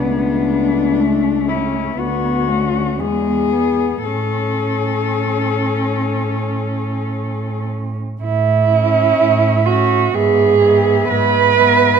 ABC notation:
X:1
M:4/4
L:1/8
Q:1/4=60
K:A
V:1 name="Cello"
D3 E F2 G2 | A6- A z | z e2 e e e2 e |]
V:2 name="Cello"
A,4 B, C B,2 | C8 | E3 F G2 B2 |]
V:3 name="Cello"
B,2 A, C B, A, G, B, | C6- C z | z C2 C B, B,2 B, |]
V:4 name="Cello" clef=bass
C,,4 D,,2 E,,2 | A,,8 | A,,2 A,,2 G,,2 G,,2 |]